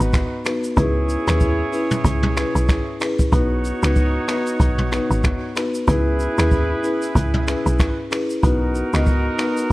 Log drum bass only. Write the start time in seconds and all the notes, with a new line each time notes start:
0.00 G#1
0.77 C#2
1.28 D#2
2.05 C#2
2.55 B1
3.33 B1
3.83 C#2
4.60 B1
5.10 G#1
5.88 C#2
6.38 D#2
7.15 C#2
7.66 B1
8.43 B1
8.94 C#2